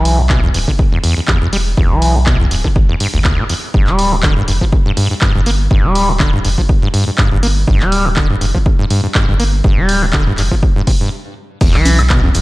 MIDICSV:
0, 0, Header, 1, 4, 480
1, 0, Start_track
1, 0, Tempo, 491803
1, 1730, Time_signature, 4, 2, 24, 8
1, 12118, End_track
2, 0, Start_track
2, 0, Title_t, "Acid bass"
2, 0, Program_c, 0, 38
2, 0, Note_on_c, 0, 52, 77
2, 181, Note_on_c, 0, 40, 80
2, 195, Note_off_c, 0, 52, 0
2, 217, Note_off_c, 0, 40, 0
2, 291, Note_on_c, 0, 47, 99
2, 398, Note_off_c, 0, 47, 0
2, 420, Note_on_c, 0, 40, 100
2, 481, Note_off_c, 0, 40, 0
2, 531, Note_on_c, 0, 40, 76
2, 574, Note_off_c, 0, 40, 0
2, 661, Note_on_c, 0, 50, 78
2, 697, Note_off_c, 0, 50, 0
2, 901, Note_on_c, 0, 40, 76
2, 961, Note_off_c, 0, 40, 0
2, 1011, Note_on_c, 0, 40, 97
2, 1118, Note_off_c, 0, 40, 0
2, 1140, Note_on_c, 0, 40, 81
2, 1177, Note_off_c, 0, 40, 0
2, 1251, Note_on_c, 0, 40, 100
2, 1358, Note_off_c, 0, 40, 0
2, 1380, Note_on_c, 0, 40, 101
2, 1441, Note_off_c, 0, 40, 0
2, 1490, Note_on_c, 0, 55, 77
2, 1533, Note_off_c, 0, 55, 0
2, 1731, Note_on_c, 0, 40, 81
2, 1860, Note_on_c, 0, 52, 78
2, 1875, Note_off_c, 0, 40, 0
2, 2100, Note_on_c, 0, 40, 76
2, 2115, Note_off_c, 0, 52, 0
2, 2137, Note_off_c, 0, 40, 0
2, 2210, Note_on_c, 0, 47, 100
2, 2317, Note_off_c, 0, 47, 0
2, 2340, Note_on_c, 0, 40, 103
2, 2401, Note_off_c, 0, 40, 0
2, 2451, Note_on_c, 0, 40, 79
2, 2493, Note_off_c, 0, 40, 0
2, 2580, Note_on_c, 0, 50, 75
2, 2617, Note_off_c, 0, 50, 0
2, 2821, Note_on_c, 0, 40, 76
2, 2881, Note_off_c, 0, 40, 0
2, 2931, Note_on_c, 0, 43, 75
2, 3002, Note_off_c, 0, 43, 0
2, 3061, Note_on_c, 0, 38, 80
2, 3121, Note_off_c, 0, 38, 0
2, 3171, Note_on_c, 0, 38, 100
2, 3300, Note_on_c, 0, 47, 104
2, 3315, Note_off_c, 0, 38, 0
2, 3361, Note_off_c, 0, 47, 0
2, 3411, Note_on_c, 0, 40, 76
2, 3454, Note_off_c, 0, 40, 0
2, 3651, Note_on_c, 0, 43, 84
2, 3781, Note_on_c, 0, 55, 81
2, 3795, Note_off_c, 0, 43, 0
2, 4020, Note_on_c, 0, 43, 78
2, 4035, Note_off_c, 0, 55, 0
2, 4057, Note_off_c, 0, 43, 0
2, 4130, Note_on_c, 0, 50, 102
2, 4238, Note_off_c, 0, 50, 0
2, 4260, Note_on_c, 0, 43, 100
2, 4321, Note_off_c, 0, 43, 0
2, 4371, Note_on_c, 0, 43, 76
2, 4414, Note_off_c, 0, 43, 0
2, 4500, Note_on_c, 0, 53, 75
2, 4537, Note_off_c, 0, 53, 0
2, 4741, Note_on_c, 0, 43, 76
2, 4801, Note_off_c, 0, 43, 0
2, 4851, Note_on_c, 0, 43, 99
2, 4958, Note_off_c, 0, 43, 0
2, 4981, Note_on_c, 0, 43, 78
2, 5017, Note_off_c, 0, 43, 0
2, 5091, Note_on_c, 0, 43, 98
2, 5198, Note_off_c, 0, 43, 0
2, 5221, Note_on_c, 0, 43, 100
2, 5281, Note_off_c, 0, 43, 0
2, 5332, Note_on_c, 0, 58, 77
2, 5374, Note_off_c, 0, 58, 0
2, 5571, Note_on_c, 0, 43, 81
2, 5701, Note_on_c, 0, 55, 80
2, 5716, Note_off_c, 0, 43, 0
2, 5941, Note_on_c, 0, 43, 79
2, 5956, Note_off_c, 0, 55, 0
2, 5977, Note_off_c, 0, 43, 0
2, 6051, Note_on_c, 0, 50, 99
2, 6158, Note_off_c, 0, 50, 0
2, 6181, Note_on_c, 0, 43, 100
2, 6241, Note_off_c, 0, 43, 0
2, 6291, Note_on_c, 0, 43, 78
2, 6334, Note_off_c, 0, 43, 0
2, 6421, Note_on_c, 0, 53, 79
2, 6457, Note_off_c, 0, 53, 0
2, 6661, Note_on_c, 0, 43, 77
2, 6721, Note_off_c, 0, 43, 0
2, 6771, Note_on_c, 0, 43, 101
2, 6878, Note_off_c, 0, 43, 0
2, 6901, Note_on_c, 0, 43, 77
2, 6937, Note_off_c, 0, 43, 0
2, 7011, Note_on_c, 0, 43, 101
2, 7118, Note_off_c, 0, 43, 0
2, 7141, Note_on_c, 0, 43, 97
2, 7201, Note_off_c, 0, 43, 0
2, 7251, Note_on_c, 0, 58, 75
2, 7293, Note_off_c, 0, 58, 0
2, 7490, Note_on_c, 0, 43, 80
2, 7620, Note_on_c, 0, 55, 78
2, 7635, Note_off_c, 0, 43, 0
2, 7860, Note_on_c, 0, 43, 77
2, 7874, Note_off_c, 0, 55, 0
2, 7896, Note_off_c, 0, 43, 0
2, 7970, Note_on_c, 0, 50, 102
2, 8077, Note_off_c, 0, 50, 0
2, 8100, Note_on_c, 0, 43, 102
2, 8161, Note_off_c, 0, 43, 0
2, 8210, Note_on_c, 0, 43, 77
2, 8253, Note_off_c, 0, 43, 0
2, 8339, Note_on_c, 0, 53, 78
2, 8376, Note_off_c, 0, 53, 0
2, 8580, Note_on_c, 0, 43, 77
2, 8641, Note_off_c, 0, 43, 0
2, 8690, Note_on_c, 0, 43, 97
2, 8797, Note_off_c, 0, 43, 0
2, 8820, Note_on_c, 0, 43, 78
2, 8857, Note_off_c, 0, 43, 0
2, 8930, Note_on_c, 0, 43, 101
2, 9038, Note_off_c, 0, 43, 0
2, 9061, Note_on_c, 0, 43, 101
2, 9121, Note_off_c, 0, 43, 0
2, 9171, Note_on_c, 0, 58, 77
2, 9213, Note_off_c, 0, 58, 0
2, 9411, Note_on_c, 0, 43, 81
2, 9541, Note_on_c, 0, 55, 82
2, 9555, Note_off_c, 0, 43, 0
2, 9781, Note_on_c, 0, 43, 79
2, 9796, Note_off_c, 0, 55, 0
2, 9817, Note_off_c, 0, 43, 0
2, 9891, Note_on_c, 0, 50, 103
2, 9998, Note_off_c, 0, 50, 0
2, 10020, Note_on_c, 0, 43, 101
2, 10081, Note_off_c, 0, 43, 0
2, 10131, Note_on_c, 0, 43, 76
2, 10174, Note_off_c, 0, 43, 0
2, 10261, Note_on_c, 0, 53, 74
2, 10297, Note_off_c, 0, 53, 0
2, 10500, Note_on_c, 0, 43, 78
2, 10561, Note_off_c, 0, 43, 0
2, 10611, Note_on_c, 0, 48, 76
2, 10654, Note_off_c, 0, 48, 0
2, 10740, Note_on_c, 0, 43, 78
2, 10831, Note_off_c, 0, 43, 0
2, 11330, Note_on_c, 0, 40, 83
2, 11460, Note_on_c, 0, 52, 79
2, 11474, Note_off_c, 0, 40, 0
2, 11700, Note_on_c, 0, 40, 77
2, 11715, Note_off_c, 0, 52, 0
2, 11737, Note_off_c, 0, 40, 0
2, 11810, Note_on_c, 0, 47, 102
2, 11917, Note_off_c, 0, 47, 0
2, 11940, Note_on_c, 0, 40, 100
2, 12001, Note_off_c, 0, 40, 0
2, 12050, Note_on_c, 0, 40, 79
2, 12093, Note_off_c, 0, 40, 0
2, 12118, End_track
3, 0, Start_track
3, 0, Title_t, "Sub bass"
3, 0, Program_c, 1, 38
3, 0, Note_on_c, 1, 35, 95
3, 499, Note_off_c, 1, 35, 0
3, 530, Note_on_c, 1, 26, 89
3, 637, Note_off_c, 1, 26, 0
3, 1380, Note_on_c, 1, 28, 94
3, 1699, Note_off_c, 1, 28, 0
3, 1731, Note_on_c, 1, 28, 99
3, 1838, Note_off_c, 1, 28, 0
3, 1861, Note_on_c, 1, 35, 89
3, 2420, Note_off_c, 1, 35, 0
3, 2451, Note_on_c, 1, 26, 95
3, 2557, Note_off_c, 1, 26, 0
3, 2691, Note_on_c, 1, 31, 95
3, 2798, Note_off_c, 1, 31, 0
3, 3060, Note_on_c, 1, 31, 93
3, 3254, Note_off_c, 1, 31, 0
3, 3300, Note_on_c, 1, 28, 100
3, 3391, Note_off_c, 1, 28, 0
3, 3651, Note_on_c, 1, 31, 96
3, 3758, Note_off_c, 1, 31, 0
3, 3781, Note_on_c, 1, 26, 91
3, 4340, Note_off_c, 1, 26, 0
3, 4371, Note_on_c, 1, 29, 92
3, 4478, Note_off_c, 1, 29, 0
3, 5220, Note_on_c, 1, 31, 94
3, 5539, Note_off_c, 1, 31, 0
3, 5571, Note_on_c, 1, 31, 99
3, 5677, Note_off_c, 1, 31, 0
3, 5700, Note_on_c, 1, 26, 92
3, 6259, Note_off_c, 1, 26, 0
3, 6290, Note_on_c, 1, 29, 93
3, 6397, Note_off_c, 1, 29, 0
3, 7140, Note_on_c, 1, 31, 94
3, 7459, Note_off_c, 1, 31, 0
3, 7491, Note_on_c, 1, 31, 102
3, 7597, Note_off_c, 1, 31, 0
3, 7620, Note_on_c, 1, 26, 97
3, 8179, Note_off_c, 1, 26, 0
3, 8210, Note_on_c, 1, 29, 93
3, 8317, Note_off_c, 1, 29, 0
3, 9061, Note_on_c, 1, 31, 94
3, 9380, Note_off_c, 1, 31, 0
3, 9411, Note_on_c, 1, 31, 98
3, 9517, Note_off_c, 1, 31, 0
3, 9540, Note_on_c, 1, 26, 94
3, 10099, Note_off_c, 1, 26, 0
3, 10130, Note_on_c, 1, 29, 93
3, 10237, Note_off_c, 1, 29, 0
3, 11331, Note_on_c, 1, 28, 101
3, 11438, Note_off_c, 1, 28, 0
3, 11461, Note_on_c, 1, 35, 94
3, 12020, Note_off_c, 1, 35, 0
3, 12050, Note_on_c, 1, 26, 95
3, 12118, Note_off_c, 1, 26, 0
3, 12118, End_track
4, 0, Start_track
4, 0, Title_t, "Drums"
4, 50, Note_on_c, 9, 46, 111
4, 148, Note_off_c, 9, 46, 0
4, 286, Note_on_c, 9, 39, 123
4, 291, Note_on_c, 9, 36, 115
4, 384, Note_off_c, 9, 39, 0
4, 389, Note_off_c, 9, 36, 0
4, 530, Note_on_c, 9, 46, 100
4, 628, Note_off_c, 9, 46, 0
4, 661, Note_on_c, 9, 36, 61
4, 758, Note_off_c, 9, 36, 0
4, 771, Note_on_c, 9, 36, 127
4, 869, Note_off_c, 9, 36, 0
4, 1011, Note_on_c, 9, 46, 113
4, 1108, Note_off_c, 9, 46, 0
4, 1246, Note_on_c, 9, 39, 117
4, 1251, Note_on_c, 9, 36, 119
4, 1344, Note_off_c, 9, 39, 0
4, 1349, Note_off_c, 9, 36, 0
4, 1490, Note_on_c, 9, 46, 95
4, 1588, Note_off_c, 9, 46, 0
4, 1731, Note_on_c, 9, 36, 120
4, 1829, Note_off_c, 9, 36, 0
4, 1971, Note_on_c, 9, 46, 107
4, 2068, Note_off_c, 9, 46, 0
4, 2207, Note_on_c, 9, 39, 116
4, 2211, Note_on_c, 9, 36, 118
4, 2304, Note_off_c, 9, 39, 0
4, 2309, Note_off_c, 9, 36, 0
4, 2451, Note_on_c, 9, 46, 98
4, 2549, Note_off_c, 9, 46, 0
4, 2581, Note_on_c, 9, 36, 63
4, 2679, Note_off_c, 9, 36, 0
4, 2691, Note_on_c, 9, 36, 118
4, 2789, Note_off_c, 9, 36, 0
4, 2931, Note_on_c, 9, 46, 109
4, 3028, Note_off_c, 9, 46, 0
4, 3167, Note_on_c, 9, 39, 112
4, 3171, Note_on_c, 9, 36, 121
4, 3264, Note_off_c, 9, 39, 0
4, 3269, Note_off_c, 9, 36, 0
4, 3411, Note_on_c, 9, 46, 98
4, 3508, Note_off_c, 9, 46, 0
4, 3651, Note_on_c, 9, 36, 120
4, 3749, Note_off_c, 9, 36, 0
4, 3777, Note_on_c, 9, 39, 35
4, 3874, Note_off_c, 9, 39, 0
4, 3891, Note_on_c, 9, 46, 104
4, 3988, Note_off_c, 9, 46, 0
4, 4126, Note_on_c, 9, 39, 112
4, 4131, Note_on_c, 9, 36, 114
4, 4224, Note_off_c, 9, 39, 0
4, 4229, Note_off_c, 9, 36, 0
4, 4371, Note_on_c, 9, 46, 92
4, 4468, Note_off_c, 9, 46, 0
4, 4501, Note_on_c, 9, 36, 61
4, 4598, Note_off_c, 9, 36, 0
4, 4611, Note_on_c, 9, 36, 117
4, 4709, Note_off_c, 9, 36, 0
4, 4851, Note_on_c, 9, 46, 104
4, 4948, Note_off_c, 9, 46, 0
4, 5087, Note_on_c, 9, 39, 113
4, 5091, Note_on_c, 9, 36, 118
4, 5184, Note_off_c, 9, 39, 0
4, 5189, Note_off_c, 9, 36, 0
4, 5331, Note_on_c, 9, 46, 93
4, 5428, Note_off_c, 9, 46, 0
4, 5571, Note_on_c, 9, 36, 112
4, 5668, Note_off_c, 9, 36, 0
4, 5811, Note_on_c, 9, 46, 101
4, 5908, Note_off_c, 9, 46, 0
4, 6047, Note_on_c, 9, 39, 113
4, 6051, Note_on_c, 9, 36, 108
4, 6145, Note_off_c, 9, 39, 0
4, 6148, Note_off_c, 9, 36, 0
4, 6291, Note_on_c, 9, 46, 89
4, 6388, Note_off_c, 9, 46, 0
4, 6421, Note_on_c, 9, 36, 59
4, 6518, Note_off_c, 9, 36, 0
4, 6531, Note_on_c, 9, 36, 115
4, 6628, Note_off_c, 9, 36, 0
4, 6771, Note_on_c, 9, 46, 102
4, 6869, Note_off_c, 9, 46, 0
4, 7007, Note_on_c, 9, 39, 110
4, 7011, Note_on_c, 9, 36, 117
4, 7104, Note_off_c, 9, 39, 0
4, 7108, Note_off_c, 9, 36, 0
4, 7251, Note_on_c, 9, 46, 90
4, 7348, Note_off_c, 9, 46, 0
4, 7491, Note_on_c, 9, 36, 116
4, 7588, Note_off_c, 9, 36, 0
4, 7616, Note_on_c, 9, 39, 39
4, 7714, Note_off_c, 9, 39, 0
4, 7731, Note_on_c, 9, 46, 102
4, 7828, Note_off_c, 9, 46, 0
4, 7966, Note_on_c, 9, 39, 113
4, 7971, Note_on_c, 9, 36, 106
4, 8064, Note_off_c, 9, 39, 0
4, 8068, Note_off_c, 9, 36, 0
4, 8211, Note_on_c, 9, 46, 87
4, 8308, Note_off_c, 9, 46, 0
4, 8341, Note_on_c, 9, 36, 59
4, 8438, Note_off_c, 9, 36, 0
4, 8451, Note_on_c, 9, 36, 108
4, 8548, Note_off_c, 9, 36, 0
4, 8691, Note_on_c, 9, 46, 104
4, 8788, Note_off_c, 9, 46, 0
4, 8927, Note_on_c, 9, 39, 115
4, 8931, Note_on_c, 9, 36, 111
4, 9024, Note_off_c, 9, 39, 0
4, 9028, Note_off_c, 9, 36, 0
4, 9171, Note_on_c, 9, 46, 86
4, 9268, Note_off_c, 9, 46, 0
4, 9411, Note_on_c, 9, 36, 113
4, 9508, Note_off_c, 9, 36, 0
4, 9650, Note_on_c, 9, 46, 106
4, 9748, Note_off_c, 9, 46, 0
4, 9886, Note_on_c, 9, 39, 120
4, 9891, Note_on_c, 9, 36, 112
4, 9984, Note_off_c, 9, 39, 0
4, 9988, Note_off_c, 9, 36, 0
4, 10126, Note_on_c, 9, 39, 39
4, 10130, Note_on_c, 9, 46, 90
4, 10224, Note_off_c, 9, 39, 0
4, 10228, Note_off_c, 9, 46, 0
4, 10261, Note_on_c, 9, 36, 59
4, 10358, Note_off_c, 9, 36, 0
4, 10371, Note_on_c, 9, 36, 113
4, 10469, Note_off_c, 9, 36, 0
4, 10611, Note_on_c, 9, 36, 81
4, 10611, Note_on_c, 9, 46, 102
4, 10708, Note_off_c, 9, 36, 0
4, 10708, Note_off_c, 9, 46, 0
4, 11331, Note_on_c, 9, 36, 125
4, 11331, Note_on_c, 9, 49, 111
4, 11333, Note_on_c, 9, 82, 35
4, 11428, Note_off_c, 9, 49, 0
4, 11429, Note_off_c, 9, 36, 0
4, 11430, Note_off_c, 9, 82, 0
4, 11456, Note_on_c, 9, 39, 40
4, 11554, Note_off_c, 9, 39, 0
4, 11571, Note_on_c, 9, 46, 109
4, 11571, Note_on_c, 9, 63, 60
4, 11572, Note_on_c, 9, 82, 84
4, 11668, Note_off_c, 9, 46, 0
4, 11668, Note_off_c, 9, 63, 0
4, 11670, Note_off_c, 9, 82, 0
4, 11700, Note_on_c, 9, 76, 80
4, 11702, Note_on_c, 9, 82, 45
4, 11798, Note_off_c, 9, 76, 0
4, 11800, Note_off_c, 9, 82, 0
4, 11807, Note_on_c, 9, 39, 125
4, 11811, Note_on_c, 9, 36, 119
4, 11813, Note_on_c, 9, 82, 36
4, 11904, Note_off_c, 9, 39, 0
4, 11909, Note_off_c, 9, 36, 0
4, 11910, Note_off_c, 9, 82, 0
4, 11941, Note_on_c, 9, 63, 39
4, 12038, Note_off_c, 9, 63, 0
4, 12051, Note_on_c, 9, 46, 96
4, 12052, Note_on_c, 9, 82, 88
4, 12118, Note_off_c, 9, 46, 0
4, 12118, Note_off_c, 9, 82, 0
4, 12118, End_track
0, 0, End_of_file